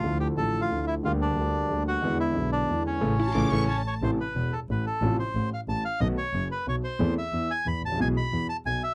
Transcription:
X:1
M:3/4
L:1/16
Q:1/4=182
K:Aphr
V:1 name="Violin section"
z12 | z12 | z12 | z2 a2 d'2 ^c'2 a4 |
[K:Am] z12 | z12 | z12 | z12 |
z12 |]
V:2 name="Bandoneon"
F2 G2 A3 F3 E2 | F2 D8 ^F2- | ^F2 E4 D4 ^C2- | ^C8 ^c2 c2 |
[K:Am] c2 B4 A2 B2 A2- | A2 c4 f2 a2 f2 | ^d2 ^c4 B2 c2 =c2- | c2 e4 ^g2 b2 a2 |
^g2 b4 a2 g2 e2 |]
V:3 name="Hollow-body jazz guitar"
z12 | z12 | z12 | z2 E F3 E2 A,4 |
[K:Am] z12 | z12 | z12 | z12 |
z12 |]
V:4 name="Grand piano" clef=bass
[D,,D,F,A,E]4 [A,,,A,,D,F,A,E]4 [D,,D,F,A,E]4 | [D,,D,G,B,G]4 [D,,D,G,B,G]4 [D,,D,G,B,G]4 | [E,,D,E,^G,=B,E]4 [=B,,,=B,,D,G,B,E]4 [E,,D,E,G,B,E]4 | [^C,E,A,]2 z2 [C,E,A,]2 [C,E,A,]2 z4 |
[K:Am] [A,,,A,,C,E,A,E]2 z2 [E,,,E,,]2 z2 [A,,,A,,]2 z2 | [A,,,A,,C,F,A,F]2 z2 [A,,,A,,]2 z2 [A,,,A,,]2 z2 | [B,,,B,,^D,A,B,^F]2 z2 [^F,,,^F,,]2 z2 [B,,,B,,]2 z2 | [E,,E,A,CA]2 z2 [E,,E,]2 z2 [E,,E,]2 z/2 ^G,,,/2 A,,,/2 _B,,,/2 |
[B,,,B,,E,^G,B,^G]2 z2 [E,,E,]2 z2 [B,,,B,,]2 z2 |]
V:5 name="Double bass" clef=bass
D,,4 A,,,4 D,,4 | D,,4 D,,4 D,,4 | E,,4 =B,,,4 E,,4 | A,,,2 z2 A,,,2 A,,,2 z4 |
[K:Am] A,,,2 z2 E,,,2 z2 A,,,2 z2 | A,,,2 z2 A,,,2 z2 A,,,2 z2 | B,,,2 z2 ^F,,,2 z2 B,,,2 z2 | E,,2 z2 E,,2 z2 E,,2 A,,,2 |
B,,,2 z2 E,,2 z2 B,,,2 z2 |]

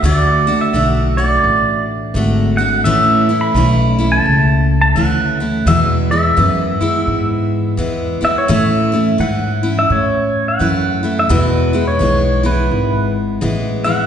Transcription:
X:1
M:4/4
L:1/16
Q:"Swing" 1/4=85
K:A
V:1 name="Pedal steel guitar"
d3 e3 d4 z4 f2 | e3 b4 a4 a f4 | e2 e12 e c | e4 f3 e c3 f4 e |
B3 c3 B4 z4 f2 |]
V:2 name="Steel-string acoustic guitar"
[D,A,DF]2 [A,DF]2 [D,A,DF]2 [A,DF]6 [D,A,DF]2 [A,DF]2 | [A,,E,A,CE]2 [A,CE]2 [E,A,CE]2 [A,CE]6 [E,A,CE]2 [A,CE]2 | [E,,B,,E,G,B,E]2 [E,G,B,E]2 [E,G,B,E]2 [E,G,B,E]6 [E,G,B,E]2 [E,G,B,E]2 | [A,,E,A,CE]2 [A,CE]2 [E,CE]2 [CE]6 [E,A,CE]2 [A,CE]2 |
[E,,B,,E,G,B,E]2 [E,G,B,E]2 [E,G,B,E]2 [E,G,B,E]6 [E,G,B,E]2 [E,G,B,E]2 |]
V:3 name="Upright bass" clef=bass
D,,4 B,,,4 A,,,4 G,,,4 | A,,,4 B,,,4 C,,4 D,,4 | E,,4 F,,2 z2 G,,4 E,,2 z2 | A,,4 G,,4 A,,4 F,,4 |
E,,4 B,,,4 G,,,4 A,,,4 |]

